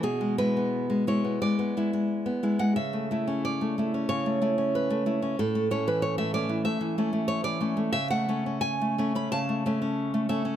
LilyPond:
\new Staff \with { instrumentName = "Nylon-string guitar" } { \time 4/4 \key a \major \tempo 4 = 92 << { gis'8 b'4 cis''8 d''4.~ d''16 fis''16 | e''4 d''4 cis''4 b'4 | a'8 cis''16 b'16 cis''16 e''16 d''8 e''4 cis''16 d''8. | e''16 fis''8. gis''8. b''16 a''4. e''8 | } \\ { b,16 gis16 <gis e'>16 b8 gis16 <gis e'>16 b16 gis16 b16 <gis e'>16 gis8 b16 <gis e'>16 gis16 | cis16 a16 <a e'>16 cis'8 a16 <a e'>16 cis'16 cis16 a16 <a e'>16 cis'8 a16 <a e'>16 cis'16 | a,16 a16 <a cis'>16 e8 a16 <a cis'>16 e16 a16 e16 <a cis'>16 a8 e16 <a cis'>16 a16 | cis16 a16 <a cis'>16 cis'8 a16 <a cis'>16 cis'16 cis16 a16 <a cis'>16 cis'8 a16 <a cis'>16 cis'16 | } >> }